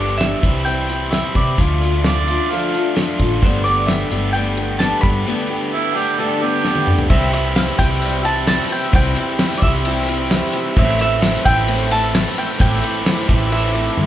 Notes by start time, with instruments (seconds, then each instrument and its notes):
Already playing: picked electric bass G1, overdriven electric guitar G2 D3 G3 B3 D4 G4, steel-string acoustic guitar B3 D4 A4, mandolin D5
0.00 steel-string acoustic guitar G3
0.18 steel-string acoustic guitar G3 B3, mandolin E5, snare, closed hi-hat
0.22 steel-string acoustic guitar D4 A4
0.41 picked electric bass C2, overdriven electric guitar C3 E3 G3, steel-string acoustic guitar C4 E4 G4, kick, closed hi-hat
0.65 steel-string acoustic guitar C3 G3 C4 E4 G4, mandolin G5, closed hi-hat
0.89 steel-string acoustic guitar C4 E4 G4, closed hi-hat
1.11 overdriven electric guitar C3 E3, steel-string acoustic guitar G3 C4 E4 G4, mandolin E5, snare, closed hi-hat
1.35 picked electric bass C3, steel-string acoustic guitar C4 E4 G4, mandolin D5, kick, closed hi-hat
1.58 picked electric bass D2, steel-string acoustic guitar D3 F3 D4 F4 A4, overdriven electric guitar A3, kick, closed hi-hat
1.81 steel-string acoustic guitar D4 F4 A4, closed hi-hat
2.04 steel-string acoustic guitar F3 D4 F4 A4, harmonica D5, snare, closed hi-hat
2.28 overdriven electric guitar D3 A3, steel-string acoustic guitar D4 F4 A4, closed hi-hat
2.51 steel-string acoustic guitar D3 F3 D4 F4 A4, harmonica F5, closed hi-hat
2.74 steel-string acoustic guitar D4 F4 A4, closed hi-hat
2.96 overdriven electric guitar D3 A3, steel-string acoustic guitar F3 D4 F4, snare, closed hi-hat
3.00 steel-string acoustic guitar A4
3.19 picked electric bass A1, steel-string acoustic guitar D4 F4 A4, kick, closed hi-hat
3.42 picked electric bass G1, steel-string acoustic guitar G2 D3 A3 B3 D4 G4, overdriven electric guitar G3, tonewheel organ A4 G5 B5, mandolin C5, kick, closed hi-hat
3.64 steel-string acoustic guitar B3 D4 G4, mandolin D5, closed hi-hat
3.68 steel-string acoustic guitar A3
3.86 steel-string acoustic guitar A3 B3 D4, mandolin E5, snare, closed hi-hat
3.91 steel-string acoustic guitar G4
4.11 picked electric bass G1, overdriven electric guitar G2 D3 G3, steel-string acoustic guitar A3 B3 D4 G4, closed hi-hat
4.33 steel-string acoustic guitar G2 D3 A3 B3 D4 G4, mandolin G5, closed hi-hat
4.57 steel-string acoustic guitar A3 B3 D4 G4, closed hi-hat
4.79 overdriven electric guitar G2 D3 G3, steel-string acoustic guitar A3 B3 D4 G4, mandolin A5, snare, closed hi-hat
5.01 picked electric bass G2, steel-string acoustic guitar D4 G4, mandolin B5, kick, closed hi-hat
5.05 steel-string acoustic guitar A3 B3
5.27 steel-string acoustic guitar G2 D3 A3 B3 D4 G4, overdriven electric guitar G3
5.50 steel-string acoustic guitar A3 B3 D4 G4
5.72 steel-string acoustic guitar A3 B3 D4 G4, harmonica E4
5.95 overdriven electric guitar G2 D3 G3, steel-string acoustic guitar A3 B3 D4 G4, harmonica G4
6.18 steel-string acoustic guitar G2 D3 A3 B3 D4 G4, harmonica A4
6.40 steel-string acoustic guitar A3 B3 D4 G4, harmonica G4
6.64 overdriven electric guitar G2 D3 G3, steel-string acoustic guitar A3 B3 D4 G4, snare
6.76 high tom
6.87 steel-string acoustic guitar A3 B3 D4 G4, mid tom
6.99 floor tom
7.09 picked electric bass C2, steel-string acoustic guitar C3 G3 C4 E4 G4, overdriven electric guitar E3, tonewheel organ C5 G5 E6, mandolin E5, kick, crash
7.32 steel-string acoustic guitar C4 E4 G4, mandolin E5, ride
7.55 steel-string acoustic guitar G3 C4 E4 G4, mandolin F5, snare, ride
7.78 picked electric bass C2, overdriven electric guitar C3 E3 G3, steel-string acoustic guitar C4 E4 G4, mandolin G5, kick, ride
8.01 steel-string acoustic guitar C3 G3 C4 E4 G4, ride
8.23 steel-string acoustic guitar C4 E4 G4, mandolin A5, ride
8.46 steel-string acoustic guitar G3 C4 E4 G4, mandolin A5, snare, ride
8.70 steel-string acoustic guitar C4 E4 G4, mandolin G5, ride
8.93 picked electric bass C2, steel-string acoustic guitar C3 G3 C4 E4 G4, overdriven electric guitar E3, mandolin G5, kick, ride
9.16 steel-string acoustic guitar C4 E4 G4, ride
9.39 steel-string acoustic guitar G3 C4 E4 G4, snare, ride
9.58 mandolin D5
9.62 picked electric bass C2, overdriven electric guitar C3 E3 G3, steel-string acoustic guitar C4 E4 G4, mandolin E5, kick, ride
9.85 steel-string acoustic guitar C3 G3 C4 E4 G4, ride
10.09 steel-string acoustic guitar C4 E4, ride
10.31 steel-string acoustic guitar G3 C4 E4 G4, snare, ride
10.53 steel-string acoustic guitar C4 E4 G4, ride
10.77 picked electric bass A1, steel-string acoustic guitar A2 E3 A3 C4 E4 A4, mandolin E5, tonewheel organ A5, kick, crash
10.99 steel-string acoustic guitar A3 C4 E4 A4, mandolin E5, ride
11.22 steel-string acoustic guitar A3 C4 E4 A4, snare, ride
11.45 picked electric bass A1, overdriven electric guitar A2 E3, steel-string acoustic guitar A3 C4 E4 A4, mandolin G5, kick, ride
11.67 steel-string acoustic guitar A2 E3 A3 C4 E4 A4, ride
11.91 steel-string acoustic guitar A3 C4 E4 A4, mandolin A5, ride
12.14 steel-string acoustic guitar A3 C4 E4 A4, snare, ride
12.36 steel-string acoustic guitar A3 C4 E4 A4, mandolin G5, ride
12.59 picked electric bass A1, steel-string acoustic guitar A2 E3 A3 C4 E4 A4, mandolin G5, tonewheel organ D6, kick, ride
12.82 steel-string acoustic guitar A3 C4 E4 A4, ride
13.04 steel-string acoustic guitar A3 C4 E4 A4, snare, ride
13.28 picked electric bass A1, overdriven electric guitar A2 E3, steel-string acoustic guitar A3 C4 E4 A4, kick, ride
13.50 steel-string acoustic guitar A2 E3 A3 C4 E4 A4, mandolin E5, ride
13.74 steel-string acoustic guitar A3 C4 E4 A4, ride
13.96 picked electric bass G2, steel-string acoustic guitar A3 C4 E4 A4, high tom